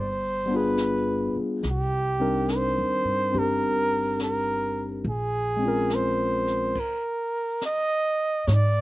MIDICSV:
0, 0, Header, 1, 6, 480
1, 0, Start_track
1, 0, Key_signature, -3, "minor"
1, 0, Tempo, 853485
1, 917, Time_signature, 4, 2, 24, 8
1, 4955, End_track
2, 0, Start_track
2, 0, Title_t, "Flugelhorn"
2, 0, Program_c, 0, 56
2, 0, Note_on_c, 0, 72, 80
2, 316, Note_on_c, 0, 71, 69
2, 324, Note_off_c, 0, 72, 0
2, 778, Note_off_c, 0, 71, 0
2, 957, Note_on_c, 0, 67, 79
2, 1438, Note_on_c, 0, 72, 84
2, 1447, Note_off_c, 0, 67, 0
2, 1903, Note_on_c, 0, 70, 86
2, 1911, Note_off_c, 0, 72, 0
2, 2369, Note_off_c, 0, 70, 0
2, 2376, Note_on_c, 0, 70, 80
2, 2744, Note_off_c, 0, 70, 0
2, 2862, Note_on_c, 0, 68, 74
2, 3343, Note_on_c, 0, 72, 71
2, 3352, Note_off_c, 0, 68, 0
2, 3823, Note_on_c, 0, 70, 68
2, 3831, Note_off_c, 0, 72, 0
2, 4290, Note_off_c, 0, 70, 0
2, 4305, Note_on_c, 0, 75, 84
2, 4766, Note_on_c, 0, 73, 54
2, 4774, Note_off_c, 0, 75, 0
2, 4801, Note_on_c, 0, 74, 80
2, 4810, Note_off_c, 0, 73, 0
2, 4955, Note_off_c, 0, 74, 0
2, 4955, End_track
3, 0, Start_track
3, 0, Title_t, "Tine electric piano"
3, 0, Program_c, 1, 4
3, 72, Control_c, 1, 64, 127
3, 258, Note_on_c, 1, 55, 44
3, 269, Note_on_c, 1, 59, 45
3, 284, Note_on_c, 1, 62, 44
3, 303, Note_on_c, 1, 65, 46
3, 318, Note_on_c, 1, 68, 50
3, 906, Note_off_c, 1, 55, 0
3, 911, Note_off_c, 1, 59, 0
3, 919, Note_off_c, 1, 62, 0
3, 925, Control_c, 1, 64, 0
3, 929, Note_off_c, 1, 65, 0
3, 936, Note_off_c, 1, 68, 0
3, 1028, Control_c, 1, 64, 127
3, 1236, Note_on_c, 1, 60, 37
3, 1239, Note_on_c, 1, 55, 41
3, 1242, Note_on_c, 1, 62, 37
3, 1243, Note_on_c, 1, 63, 38
3, 1246, Note_on_c, 1, 70, 45
3, 1862, Note_off_c, 1, 60, 0
3, 1869, Note_off_c, 1, 62, 0
3, 1869, Note_on_c, 1, 60, 36
3, 1876, Note_on_c, 1, 62, 34
3, 1884, Note_on_c, 1, 67, 43
3, 2832, Note_off_c, 1, 60, 0
3, 2835, Note_off_c, 1, 55, 0
3, 2835, Note_off_c, 1, 62, 0
3, 2837, Note_off_c, 1, 63, 0
3, 2839, Note_off_c, 1, 67, 0
3, 2839, Note_off_c, 1, 70, 0
3, 2842, Control_c, 1, 64, 0
3, 2925, Control_c, 1, 64, 127
3, 3130, Note_on_c, 1, 56, 39
3, 3144, Note_on_c, 1, 60, 37
3, 3165, Note_on_c, 1, 61, 37
3, 3179, Note_on_c, 1, 65, 35
3, 3194, Note_on_c, 1, 70, 51
3, 3781, Note_off_c, 1, 56, 0
3, 3788, Note_off_c, 1, 60, 0
3, 3799, Note_off_c, 1, 61, 0
3, 3802, Control_c, 1, 64, 0
3, 3806, Note_off_c, 1, 65, 0
3, 3813, Note_off_c, 1, 70, 0
3, 4868, Control_c, 1, 64, 127
3, 4955, End_track
4, 0, Start_track
4, 0, Title_t, "Upright bass"
4, 0, Program_c, 2, 32
4, 0, Note_on_c, 2, 31, 70
4, 738, Note_off_c, 2, 31, 0
4, 919, Note_on_c, 2, 36, 70
4, 1535, Note_off_c, 2, 36, 0
4, 1565, Note_on_c, 2, 39, 52
4, 1710, Note_off_c, 2, 39, 0
4, 1713, Note_on_c, 2, 43, 51
4, 1863, Note_off_c, 2, 43, 0
4, 1880, Note_on_c, 2, 31, 65
4, 2815, Note_off_c, 2, 31, 0
4, 2838, Note_on_c, 2, 34, 73
4, 3773, Note_off_c, 2, 34, 0
4, 4767, Note_on_c, 2, 44, 78
4, 4955, Note_off_c, 2, 44, 0
4, 4955, End_track
5, 0, Start_track
5, 0, Title_t, "Muted upright bass strokes"
5, 767, Note_on_c, 9, 29, 30
5, 823, Note_off_c, 9, 29, 0
5, 4955, End_track
6, 0, Start_track
6, 0, Title_t, "Drums"
6, 435, Note_on_c, 9, 38, 38
6, 435, Note_on_c, 9, 44, 42
6, 491, Note_off_c, 9, 38, 0
6, 491, Note_off_c, 9, 44, 0
6, 915, Note_on_c, 9, 25, 28
6, 915, Note_on_c, 9, 38, 25
6, 972, Note_off_c, 9, 38, 0
6, 1398, Note_on_c, 9, 38, 32
6, 1398, Note_on_c, 9, 44, 45
6, 1454, Note_off_c, 9, 38, 0
6, 1454, Note_off_c, 9, 44, 0
6, 1874, Note_off_c, 9, 25, 0
6, 1874, Note_on_c, 9, 25, 29
6, 2358, Note_on_c, 9, 38, 42
6, 2358, Note_on_c, 9, 44, 49
6, 2414, Note_off_c, 9, 38, 0
6, 2414, Note_off_c, 9, 44, 0
6, 2837, Note_off_c, 9, 25, 0
6, 2837, Note_on_c, 9, 25, 28
6, 3317, Note_on_c, 9, 38, 36
6, 3317, Note_on_c, 9, 44, 38
6, 3373, Note_off_c, 9, 38, 0
6, 3373, Note_off_c, 9, 44, 0
6, 3639, Note_on_c, 9, 38, 23
6, 3695, Note_off_c, 9, 38, 0
6, 3799, Note_on_c, 9, 36, 54
6, 3804, Note_off_c, 9, 25, 0
6, 3804, Note_on_c, 9, 25, 27
6, 3804, Note_on_c, 9, 49, 49
6, 3855, Note_off_c, 9, 36, 0
6, 3860, Note_off_c, 9, 49, 0
6, 4282, Note_on_c, 9, 38, 39
6, 4282, Note_on_c, 9, 44, 48
6, 4338, Note_off_c, 9, 38, 0
6, 4338, Note_off_c, 9, 44, 0
6, 4765, Note_off_c, 9, 25, 0
6, 4765, Note_on_c, 9, 25, 37
6, 4765, Note_on_c, 9, 38, 34
6, 4822, Note_off_c, 9, 38, 0
6, 4955, Note_off_c, 9, 25, 0
6, 4955, End_track
0, 0, End_of_file